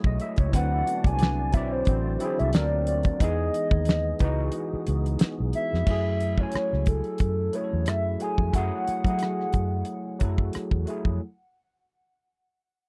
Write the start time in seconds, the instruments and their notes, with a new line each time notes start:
Already playing: tonewheel organ F#3 A3 E4 G#4, tine electric piano F#3 A3 E4 F#4 C#5
0.04 fingered electric bass B1, tine electric piano D#5, kick
0.20 tine electric piano E5, closed hi-hat
0.36 fingered electric bass C#2, tine electric piano C#5, kick, closed hi-hat
0.52 fingered electric bass D2, tonewheel organ D3 D4 F#4 D5, tine electric piano F#3 C4 E4, soft synth lead F#5, kick, closed hi-hat
0.57 tine electric piano B4
0.72 trombone section E3 C4 E4
0.86 trombone section A3 B3 D4, closed hi-hat
1.04 fingered electric bass C2, soft synth lead G#5, kick, closed hi-hat
1.19 snare, closed hi-hat
1.52 fingered electric bass B1, tine electric piano F#3 C4 E4, soft synth lead E5, kick, closed hi-hat
1.57 tine electric piano D5
1.72 soft synth lead C5
1.85 fingered electric bass A1, trombone section F#3 A3 C4, kick, closed hi-hat
2.19 trombone section E3 C4 E4, tine electric piano F#3 C4 E4, closed hi-hat
2.24 tine electric piano G#4
2.39 fingered electric bass C2, soft synth lead E5, closed hi-hat
2.52 fingered electric bass D2, tonewheel organ D3 A#3 F4, tine electric piano F3 C4 D4, soft synth lead D5, snare, closed hi-hat
2.57 tine electric piano F#3 A#4
2.87 soft synth lead D5, closed hi-hat
3.03 kick, closed hi-hat
3.19 fingered electric bass E2, tine electric piano E3 B3 D#4, tonewheel organ G#3 B3 G#4, soft synth lead D#5, kick, closed hi-hat
3.24 tine electric piano G#4
3.54 closed hi-hat
3.71 fingered electric bass D#2, kick
3.85 snare, closed hi-hat
4.19 fingered electric bass C#2, tine electric piano E3 B3 D#4, kick, closed hi-hat
4.24 tine electric piano F#4
4.52 closed hi-hat
4.73 muted fingered electric bass stroke
4.87 fingered electric bass C#2, closed hi-hat
5.06 closed hi-hat
5.19 snare, closed hi-hat
5.40 fingered electric bass B1
5.53 soft synth lead E5, closed hi-hat
5.73 fingered electric bass F2, snare
5.86 fingered electric bass F#2, tine electric piano F#3 A3 E4, kick, crash
5.90 tine electric piano G#4
6.20 closed hi-hat
6.38 tine electric piano F#3 A3 E4, soft synth lead C#5, kick
6.43 tine electric piano G#5
6.52 muted fingered electric bass stroke, cross-stick, closed hi-hat
6.73 fingered electric bass C#2, cross-stick
6.86 soft synth lead A4, kick, closed hi-hat
7.04 closed hi-hat
7.18 fingered electric bass F#2, kick, closed hi-hat
7.53 tine electric piano F#3 A3 E4, soft synth lead C#5, closed hi-hat
7.57 tine electric piano G#4
7.64 tine electric piano A4
7.73 fingered electric bass E2
7.86 fingered electric bass F#2, soft synth lead E5, cross-stick, closed hi-hat
8.19 tine electric piano F#3 A3 E4, soft synth lead G#5, closed hi-hat
8.24 tine electric piano G#4
8.38 fingered electric bass F2, kick
8.53 fingered electric bass F#2, tine electric piano F#3 A3 E4, soft synth lead F#5, kick, closed hi-hat
8.57 tine electric piano G#4
8.88 muted fingered electric bass stroke, closed hi-hat
9.04 fingered electric bass F#3, tine electric piano F#3 A3 E4, kick, closed hi-hat
9.10 tine electric piano G#4
9.19 cross-stick, closed hi-hat
9.41 cross-stick
9.52 fingered electric bass F#2, kick, closed hi-hat
9.85 closed hi-hat
10.19 fingered electric bass F#2, tine electric piano F#3 A3 E4, kick, closed hi-hat
10.24 tine electric piano A4
10.38 kick
10.53 muted fingered electric bass stroke, cross-stick, closed hi-hat
10.71 fingered electric bass E2, kick
10.86 tine electric piano F#3 A3 E4, closed hi-hat
10.90 tine electric piano G#4
11.05 fingered electric bass F2, kick